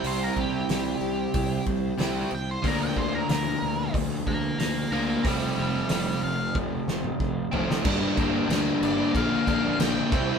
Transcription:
<<
  \new Staff \with { instrumentName = "Lead electric guitar" } { \time 4/4 \key bes \lydian \tempo 4 = 92 c''16 bes'16 g'2 r4 g''16 c''16 | bes'16 g''16 c''16 bes'16 bes'4 r8 <f'' bes''>8 <f'' bes''>8 <f'' bes''>8 | <d'' g''>8 <d'' g''>8 <d'' g''>8 f''8 r2 | r4. d''8 f''4 g''8 g''8 | }
  \new Staff \with { instrumentName = "Steel-string acoustic guitar" } { \time 4/4 \key bes \lydian c8 c8 g8 c'8 e'8 c'8 c8 c'8 | r1 | r1 | r1 | }
  \new Staff \with { instrumentName = "Overdriven electric guitar" } { \time 4/4 \key bes \lydian <c g c' e' g'>2. <c g c' e' g'>8 r8 | <d f bes d'>2.~ <d f bes d'>8 <d f bes d'>8 | <f, c f a c'>2.~ <f, c f a c'>8 <f, c f a c'>8 | <g, d g bes d'>16 <g bes d'>16 <d g bes d'>16 <g bes d'>16 <g, d g bes d'>8. <g bes d'>16 <bes, d f bes d'>16 <f bes d'>16 <d f bes d'>16 <f bes d'>16 <bes, d f bes d'>8 <c g c' e'>16 <g c' e'>16 | }
  \new Staff \with { instrumentName = "Fingered electric bass" } { \clef bass \time 4/4 \key bes \lydian c,8 c,8 c,8 c,8 c,8 c,8 c,8 c,8 | d,8 d,8 d,8 d,8 d,8 d,8 d,8 d,8 | f,,8 f,,8 f,,8 f,,8 f,,8 f,,8 f,,8 f,,8 | g,,8 g,,8 d,8 g,,8 bes,,8 bes,,8 bes,,8 c,8 | }
  \new DrumStaff \with { instrumentName = "Drums" } \drummode { \time 4/4 hho8 bd8 <hho sn>4 <hho bd>8 bd8 <hho sn>4 | <hho bd>8 bd8 <hho sn>4 <hho bd>8 bd8 <hho sn>4 | <hho bd>4 <hho sn>4 bd8 sn16 toml16 bd8 tomfh16 sn16 | <cymc bd>8 <cymc bd>8 <cymc sn>8 cymc8 <cymc bd>8 <cymc bd>8 <cymc sn>8 <cymc bd>8 | }
>>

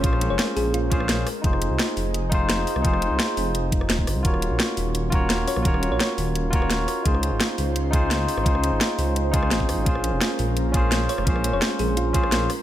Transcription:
<<
  \new Staff \with { instrumentName = "Synth pluck" } { \time 4/4 \key bes \minor \tempo 4 = 171 r8. des''16 des''16 r16 aes'8 f'4. r8 | r1 | r1 | r2. r8 des''8 |
r8. des''16 des''16 r2 r8. | r1 | r1 | r2. r8 des''8 |
r8. des''16 des''16 r16 aes'8 f'4. r8 | }
  \new Staff \with { instrumentName = "Tine electric piano" } { \time 4/4 \key bes \minor <des' f' aes' c''>2~ <des' f' aes' c''>8 <des' f' aes' c''>4 r8 | <ees' f' aes' c''>2~ <ees' f' aes' c''>8 <ees' f' aes' c''>4. | <ees' f' aes' c''>2~ <ees' f' aes' c''>8 r4. | <f' ges' bes' des''>2~ <f' ges' bes' des''>8 <f' ges' bes' des''>4. |
<f' ges' bes' des''>2~ <f' ges' bes' des''>8 <f' ges' bes' des''>4. | <ees' f' aes' c''>2~ <ees' f' aes' c''>8 <ees' f' aes' c''>4. | <ees' f' aes' c''>2~ <ees' f' aes' c''>8 <ees' f' aes' c''>4. | <des' f' aes' c''>2~ <des' f' aes' c''>8 <des' f' aes' c''>4. |
<des' f' aes' c''>2~ <des' f' aes' c''>8 <des' f' aes' c''>4 r8 | }
  \new Staff \with { instrumentName = "Analog synth pad" } { \time 4/4 \key bes \minor << { <aes bes'>2.~ <aes bes'>8 aes'8~ | aes'1~ | aes'1 | r1 |
r1 | c''1~ | c''1 | <aes bes'>1~ |
<aes bes'>2.~ <aes bes'>8 aes'8 | } \\ { des'2.~ des'8 ees'8~ | ees'1~ | ees'1 | des'1~ |
des'1 | des'1~ | des'1~ | des'1~ |
des'2.~ des'8 ees'8 | } >> }
  \new Staff \with { instrumentName = "Detuned saw bass" } { \clef bass \time 4/4 \key bes \minor bes,,8. f,,16 r8 bes,,2 r8 | f,,8. c,16 r8 f,,2 r16 c,16 | f,,8. c,16 r8 f,,4. ees,,8 aes,,16 c,16 | ees,,8. bes,,16 r8 ees,,2 r16 bes,,16 |
ees,,8. bes,,16 r8 ees,,2 r8 | des,8. aes,,16 r8 des,2 r16 aes,,16 | des,8. aes,,16 r8 des,4. aes,,8 f,16 aes,,16 | bes,,8. f,,16 r8 bes,,2 r16 f,,16 |
bes,,8. f,,16 r8 bes,,2 r8 | }
  \new DrumStaff \with { instrumentName = "Drums" } \drummode { \time 4/4 <hh bd>16 ss16 hh8 <hh sn>8 hho8 hh8 <hh bd>16 ss16 <hh sn>8 <hho ss>8 | <hh bd>16 ss16 hh8 <hh sn>8 hho8 hh8 <hh bd>8 <hh sn>8 hho16 ss16 | <hh bd>16 ss16 hh8 <hh sn>8 hho8 hh8 <hh bd>16 ss16 <hh sn>16 bd16 <hho ss>8 | <hh bd>16 ss16 hh8 <hh sn>8 hho8 hh8 <hh bd>8 <hh sn>8 hho16 ss16 |
<hh bd>16 ss16 hh8 <hh sn>8 hho8 hh8 <hh bd>16 ss16 <hh sn>8 <hho ss>8 | <hh bd>16 ss16 hh8 <hh sn>8 hho8 hh8 <hh bd>8 <hh sn>8 hho16 ss16 | <hh bd>16 ss16 hh8 <hh sn>8 hho8 hh8 <hh bd>16 ss16 <hh sn>16 bd16 <hho ss>8 | <hh bd>16 ss16 hh8 <hh sn>8 hho8 hh8 <hh bd>8 <hh sn>8 hho16 ss16 |
<hh bd>16 ss16 hh8 <hh sn>8 hho8 hh8 <hh bd>16 ss16 <hh sn>8 <hho ss>8 | }
>>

